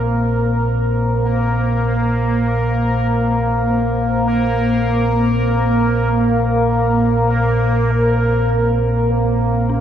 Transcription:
Already playing: synth drone A#1 A#2, ambient pad A#3 A#4 C5, synth texture A#3 A#4
9.69 synth bell C#4

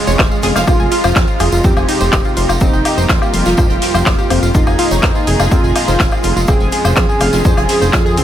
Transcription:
Already playing: synth drone F2, string section C#3 F3 G#3 C4 F4, supersaw synth G#3
0.07 analog synth bass F1, synth pluck C#5 C#6, closed hi-hat, tambourine
0.19 analog synth bass F1, synth pluck C5 C6, kick, snare, clap, tambourine, low woodblock, shaker
0.31 synth pluck F5 F6, tambourine
0.43 analog synth bass F1, synth pluck G#4 G#5, snare, open hi-hat, ride, shaker
0.56 analog synth bass F1, synth pluck F5 F6, snare, tambourine, low woodblock, shaker
0.67 analog synth bass F1, synth drone F2, string section C3 D#4, supersaw synth F4, synth pluck F4 F5, kick, tambourine, low woodblock, shaker
0.80 analog synth bass F1, synth pluck G#5 G#6, tambourine
0.92 synth pluck F4 F5, open hi-hat, ride, shaker
1.04 analog synth bass F1, synth pluck C5 C6, closed hi-hat, tambourine, low woodblock
1.16 analog synth bass F2, synth pluck C4 C5, kick, snare, clap, tambourine, shaker
1.27 synth pluck F4 F5, tambourine
1.40 analog synth bass F1, synth pluck G#4 G#5, open hi-hat, ride, low woodblock, shaker
1.52 analog synth bass F1, synth pluck F4 F5, tambourine
1.64 analog synth bass F2, synth pluck C4 C5, supersaw synth G4, kick, tambourine, shaker
1.77 analog synth bass F1, synth pluck G#5 G#6, tambourine, low woodblock
1.88 synth pluck D#4 D#5, open hi-hat, ride, shaker
2.01 analog synth bass F1, synth pluck C5 C6, tambourine
2.13 analog synth bass F1, synth pluck C4 C5, kick, snare, clap, tambourine, low woodblock, shaker
2.25 synth pluck F4 F5, tambourine
2.37 analog synth bass F1, synth pluck F4 F5, open hi-hat, ride, shaker
2.49 analog synth bass F1, synth pluck F4 F5, tambourine, low woodblock
2.60 analog synth bass F1, string section G3 A#3 G4, synth pluck C4 C5, supersaw synth D#4, kick, tambourine, shaker
2.73 analog synth bass F1, synth pluck G5 G6, tambourine
2.85 synth pluck G4 G5, open hi-hat, ride, low woodblock, shaker
2.97 analog synth bass F1, synth pluck C5 C6, tambourine
3.09 analog synth bass F2, synth pluck F4 F5, supersaw synth F4, kick, snare, clap, tambourine, shaker
3.22 synth pluck G4 G5, tambourine, low woodblock
3.34 analog synth bass F1, synth pluck F5 F6, open hi-hat, ride, shaker
3.46 analog synth bass F1, synth pluck F4 F5, snare, tambourine
3.57 analog synth bass F2, synth pluck C5 C6, kick, tambourine, low woodblock, shaker
3.70 analog synth bass F1, synth pluck G5 G6, closed hi-hat, tambourine
3.81 synth pluck G4 G5, snare, open hi-hat, ride, shaker
3.94 analog synth bass F1, synth pluck C5 C6, tambourine, low woodblock
4.06 analog synth bass F1, synth pluck F4 F5, kick, snare, clap, tambourine, shaker
4.18 synth pluck G4 G5, tambourine
4.30 analog synth bass F1, synth pluck C4 C5, open hi-hat, ride, low woodblock, shaker
4.43 analog synth bass F1, synth pluck F4 F5, tambourine
4.54 analog synth bass F1, string section A#2 D#3 G#3 D#4 G#4, supersaw synth D#4, synth pluck F4 F5, kick, tambourine, shaker
4.67 analog synth bass F1, synth pluck G#5 G#6, tambourine, low woodblock
4.79 synth pluck F4 F5, open hi-hat, ride, shaker
4.91 analog synth bass F1, synth pluck C#5 C#6, closed hi-hat, tambourine
5.02 analog synth bass F2, synth pluck C4 C5, kick, snare, clap, tambourine, low woodblock, shaker
5.15 synth pluck F4 F5, tambourine
5.27 analog synth bass F1, synth pluck G#4 G#5, open hi-hat, ride, shaker
5.40 analog synth bass F1, synth pluck F4 F5, tambourine, low woodblock
5.51 analog synth bass F2, synth pluck C4 C5, supersaw synth F4, kick, tambourine, shaker
5.64 analog synth bass F1, synth pluck G#5 G#6, tambourine
5.76 synth pluck D#4 D#5, open hi-hat, ride, low woodblock, shaker
5.88 analog synth bass F1, synth pluck C5 C6, tambourine
6.00 analog synth bass F1, synth pluck C4 C5, kick, snare, clap, tambourine, shaker
6.11 synth pluck F4 F5, tambourine, low woodblock
6.23 analog synth bass F1, synth pluck F4 F5, open hi-hat, ride, shaker
6.36 analog synth bass F1, synth pluck F4 F5, tambourine
6.47 analog synth bass F1, string section C#3 F3 C4 F4, synth pluck C4 C5, supersaw synth G#4, kick, tambourine, low woodblock, shaker
6.60 analog synth bass F1, synth pluck G#5 G#6, tambourine
6.72 synth pluck G#4 G#5, open hi-hat, ride, shaker
6.85 analog synth bass F1, synth pluck C5 C6, tambourine, low woodblock
6.96 analog synth bass F2, synth pluck F4 F5, supersaw synth G#4, kick, snare, clap, tambourine, shaker
7.09 synth pluck G#4 G#5, tambourine
7.20 analog synth bass F1, synth pluck F5 F6, open hi-hat, ride, low woodblock, shaker
7.33 analog synth bass F1, synth pluck F4 F5, snare, tambourine
7.45 analog synth bass F2, synth pluck C5 C6, kick, tambourine, shaker
7.57 analog synth bass F1, synth pluck G#5 G#6, closed hi-hat, tambourine, low woodblock
7.69 synth pluck G#4 G#5, snare, open hi-hat, ride, shaker
7.81 analog synth bass F1, synth pluck C5 C6, tambourine
7.93 analog synth bass F2, synth pluck F4 F5, kick, snare, clap, tambourine, low woodblock, shaker
8.06 synth pluck G#4 G#5, tambourine
8.17 analog synth bass C2, synth pluck C4 C5, open hi-hat, ride, shaker

